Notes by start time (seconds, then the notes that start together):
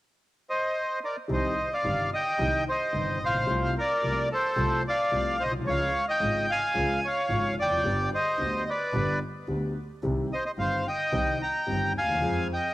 0.50 C5 D#5
1.04 A#4 D5
1.28 C2 C3 D#3 G3 D#4
1.33 C5 D#5
1.73 D5 F5
1.84 G1 G2 C3 D#3 G3 D#4
2.13 D#5 G5
2.38 C2 C3 D#3 G3 D#4
2.69 C5 D#5
2.93 G1 G2 C3 D#3 G3 D#4
3.21 A#1 C5
3.26 A1 F5
3.34 A#1
3.41 B1
3.47 C2 C3 F3 A3 F4
3.78 A#4 D5
4.02 C2 C3 F3 A3 F4
4.32 A4 C5
4.56 C2 C3 F3 A3 F4
4.88 D5 F5
5.11 C2 C3 F3 A3 F4
5.39 B1 C5 D#5
5.45 A#1
5.52 B1
5.59 C2
5.64 C#2 C#3 F3 G#3 F4 C#5
5.70 F5
6.08 D#5 G5
6.19 G#1 G#2 C#3 F3 G#3 F4
6.50 F5 G#5
6.74 C#2 C#3 F3 G#3 F4
7.05 C#5 F5
7.28 G#1 G#2 C#3 F3 G#3 F4
7.57 F1 D5
7.62 E2 G5
7.70 F2
7.78 F#2
7.84 G1 G2 D3 G3 B3 G4
8.14 C5 D#5
8.38 D2 D3 G3 B3 G4
8.70 B4 D5
8.93 G1 G2 D3 G3 B3 G4
9.48 D2 D3 G3 B3 G4
10.03 C2 C3 D#3 G3 C4 G4
10.33 C5 D#5
10.46 C5 D#5
10.57 G1 G2 D#3 G3 C4 G4 C5 F5
10.88 D#5 G5
11.12 C2 C3 D#3 G3 C4 G4
11.42 G5 A#5
11.66 G1 G2 D#3 G3 C4 G4
11.96 D#2 F5 G#5
12.01 D2
12.09 D#2
12.14 E2
12.20 F2 F3 G#3 C4 G#4
12.53 D#5 G5